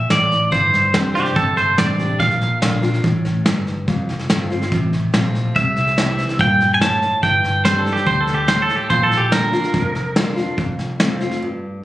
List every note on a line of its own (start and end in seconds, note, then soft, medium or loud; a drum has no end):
0.00 0.11 E5 medium
0.10 0.46 A1 medium
0.10 0.50 A2 medium
0.10 0.54 D5 medium
0.10 snare medium
0.10 hi-hat pedal medium
0.31 snare soft
0.52 0.83 G1 medium
0.52 1.32 G2 medium
0.52 1.32 C5 medium
0.52 kick loud
0.52 snare soft
0.73 snare soft
0.93 1.30 F1 medium
0.93 1.34 G3 soft
0.93 1.34 C4 medium
0.93 1.34 D4 medium
0.93 1.35 G4 medium
0.93 snare loud
0.93 hi-hat pedal medium
1.15 1.36 G4 medium
1.15 snare soft
1.25 snare soft
1.36 1.72 G1 medium
1.36 2.16 C3 medium
1.36 1.57 A4 medium
1.36 kick loud
1.36 snare soft
1.57 1.78 C5 medium
1.57 snare soft
1.77 2.14 A1 medium
1.77 1.98 G3 medium
1.77 1.98 C4 medium
1.77 1.99 D4 medium
1.77 1.98 G4 medium
1.77 2.19 D5 medium
1.77 snare loud
1.77 hi-hat pedal medium
1.99 2.20 D4 soft
1.99 2.19 G4 medium
1.99 snare soft
2.20 2.51 A#1 medium
2.20 3.00 A#2 medium
2.20 3.01 F5 medium
2.20 kick loud
2.20 snare soft
2.31 snare soft
2.41 snare soft
2.62 2.98 A#1 medium
2.62 2.82 D3 medium
2.62 2.82 A#3 medium
2.62 2.83 D4 medium
2.62 2.81 F4 medium
2.62 snare loud
2.62 hi-hat pedal medium
2.82 3.04 D4 soft
2.82 3.03 F4 medium
2.82 snare soft
2.94 snare soft
3.04 3.40 A1 medium
3.04 3.44 A2 medium
3.04 kick medium
3.04 snare soft
3.25 snare soft
3.46 3.86 G2 medium
3.46 snare loud
3.46 hi-hat pedal medium
3.67 snare soft
3.88 4.19 F1 medium
3.88 4.67 F2 medium
3.88 kick medium
3.88 snare soft
4.09 snare soft
4.19 snare soft
4.29 4.66 G1 medium
4.29 4.50 F3 medium
4.29 4.50 A3 medium
4.29 4.50 C4 medium
4.29 4.49 F4 medium
4.29 snare loud
4.29 hi-hat pedal medium
4.50 4.72 C4 soft
4.50 4.71 F4 medium
4.50 snare soft
4.62 snare soft
4.72 5.07 A1 medium
4.72 5.51 C3 medium
4.72 kick loud
4.72 snare soft
4.93 snare soft
5.13 5.49 A#1 medium
5.13 5.53 F3 medium
5.13 5.54 A3 medium
5.13 5.54 C4 medium
5.13 5.54 F4 medium
5.13 snare loud
5.13 hi-hat pedal medium
5.35 snare soft
5.56 6.18 C2 medium
5.56 6.35 C3 medium
5.56 6.42 E5 medium
5.56 kick loud
5.56 snare soft
5.76 snare soft
5.87 snare soft
5.97 6.37 E3 medium
5.97 6.37 G3 medium
5.97 6.38 C4 medium
5.97 6.38 E4 medium
5.97 snare loud
5.97 hi-hat pedal medium
6.18 snare soft
6.29 snare soft
6.39 7.01 G2 medium
6.39 6.79 A#2 medium
6.39 6.74 G5 medium
6.39 kick loud
6.39 snare soft
6.60 snare soft
6.74 6.81 G#5 medium
6.81 7.21 A2 medium
6.81 7.23 A5 medium
6.81 snare loud
6.81 hi-hat pedal medium
7.02 snare soft
7.23 7.85 G1 medium
7.23 8.03 G2 medium
7.23 7.62 G5 medium
7.23 kick loud
7.23 snare soft
7.44 snare soft
7.65 8.05 G3 medium
7.65 8.05 C4 medium
7.65 8.05 D4 medium
7.65 8.06 G4 medium
7.65 7.79 C5 medium
7.65 snare loud
7.65 hi-hat pedal medium
7.79 7.92 A4 medium
7.86 snare soft
7.93 8.06 G4 medium
7.93 snare soft
8.06 8.68 D2 medium
8.06 8.21 C5 medium
8.06 kick loud
8.06 snare soft
8.21 8.34 A4 medium
8.27 snare soft
8.34 8.48 G4 medium
8.48 8.88 A2 medium
8.48 8.62 C5 medium
8.48 snare medium
8.48 hi-hat pedal medium
8.62 8.76 A4 medium
8.69 snare soft
8.76 8.89 G4 medium
8.90 9.52 A#1 medium
8.90 9.70 A#2 medium
8.90 9.03 C5 medium
8.90 kick loud
8.90 snare soft
9.03 9.17 A4 medium
9.11 snare soft
9.17 9.31 G4 medium
9.32 9.52 D3 medium
9.32 9.53 A#3 medium
9.32 9.53 D4 medium
9.32 9.52 F4 medium
9.32 10.54 A#4 medium
9.32 snare loud
9.32 hi-hat pedal medium
9.53 9.74 D4 soft
9.53 9.73 F4 medium
9.53 snare soft
9.64 snare soft
9.74 10.36 F1 medium
9.74 10.53 F2 medium
9.74 kick loud
9.74 snare soft
9.95 snare soft
10.16 10.36 D3 medium
10.16 10.36 A#3 medium
10.16 10.36 D4 medium
10.16 10.35 F4 medium
10.16 snare loud
10.16 hi-hat pedal medium
10.36 10.58 D4 soft
10.36 10.56 F4 medium
10.36 snare soft
10.58 11.20 F1 medium
10.58 11.37 F2 medium
10.58 kick loud
10.58 snare soft
10.79 snare soft
11.00 11.20 F3 medium
11.00 11.20 A3 medium
11.00 11.20 C4 medium
11.00 11.19 F4 medium
11.00 snare loud
11.00 hi-hat pedal medium
11.20 11.42 C4 soft
11.20 11.40 F4 medium
11.20 snare soft
11.31 snare soft
11.42 11.84 G2 medium